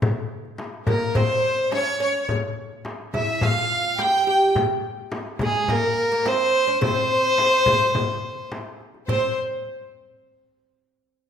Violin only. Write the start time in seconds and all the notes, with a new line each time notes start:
0.89 A#4
1.17 C5
1.75 C#5
2.03 C#5
3.16 E5
3.43 F5
4.01 G5
4.30 G5
5.43 G#4
5.70 A#4
6.28 C5
6.84 C5
9.09 C5